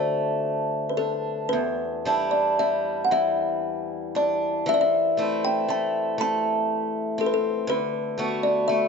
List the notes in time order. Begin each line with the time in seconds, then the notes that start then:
Already playing: D3 A3 D4 F#4 C5
0.89 B4
0.97 D4 A4
1.49 E2 B4
2.05 G3 D4 E4
2.31 D5
2.59 G3 E5
3.05 F#5
3.11 E3 E5
4.15 D4 D5
4.66 E3 E5
4.74 D5
4.81 E5
5.17 A3 C4 E4
5.45 G5
5.69 A3 A5
6.18 A3 A5
7.18 C4 A4
7.26 B4
7.34 A4
7.67 D3 B4
8.18 A3 B3 F#4
8.43 D5
8.68 A3 E5